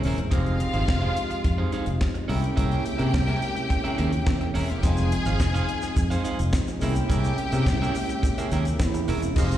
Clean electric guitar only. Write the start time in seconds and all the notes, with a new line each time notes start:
0.05 C#4 G#4 A#4 E5
0.19 muted clean electric guitar stroke
0.31 D#4 G#4 C5 F5
0.60 muted clean electric guitar stroke
0.73 D#4 G#4 C5 F5
0.88 muted clean electric guitar stroke
1.02 D#4 G#4 C5 F5
1.17 muted clean electric guitar stroke
1.31 muted clean electric guitar stroke
1.45 muted clean electric guitar stroke
1.58 D#4 G#4 C5 F5
1.72 D#4 G#4 C5 F5
1.87 muted clean electric guitar stroke
2.01 muted clean electric guitar stroke
2.14 muted clean electric guitar stroke
2.28 C#4 G#4 A#4 E5
2.42 muted clean electric guitar stroke
2.56 C#4 G#4 A#4 E5
2.85 muted clean electric guitar stroke
2.98 C#4 G#4 A#4 E5
3.13 muted clean electric guitar stroke
3.27 C#4 G#4 A#4 E5
3.41 muted clean electric guitar stroke
3.55 muted clean electric guitar stroke
3.70 muted clean electric guitar stroke
3.84 C#4 G#4 A#4 E5
3.97 C#4 G#4 A#4 E5
4.12 muted clean electric guitar stroke
4.27 muted clean electric guitar stroke
4.41 muted clean electric guitar stroke
4.54 C#4 G#4 A#4 E5
4.68 muted clean electric guitar stroke
4.83 D#4 G#4 C5 F5
5.12 muted clean electric guitar stroke
5.26 D#4 G#4 C5 F5
5.54 D#4 G#4 C5 F5
5.67 muted clean electric guitar stroke
5.83 muted clean electric guitar stroke
5.96 muted clean electric guitar stroke
6.10 D#4 G#4 C5 F5
6.24 D#4 G#4 C5 F5
6.40 muted clean electric guitar stroke
6.53 muted clean electric guitar stroke
6.68 muted clean electric guitar stroke
6.82 C#4 G#4 A#4 E5
6.96 muted clean electric guitar stroke
7.09 C#4 G#4 A#4 E5
7.38 muted clean electric guitar stroke
7.53 C#4 G#4 A#4 E5
7.82 C#4 G#4 A#4 E5
7.96 muted clean electric guitar stroke
8.09 muted clean electric guitar stroke
8.23 muted clean electric guitar stroke
8.38 C#4 G#4 A#4 E5
8.52 C#4 G#4 A#4 E5
8.66 muted clean electric guitar stroke
8.80 muted clean electric guitar stroke
8.94 muted clean electric guitar stroke
9.08 C#4 G#4 A#4 E5
9.22 muted clean electric guitar stroke
9.37 D#4 G#4 C5 F5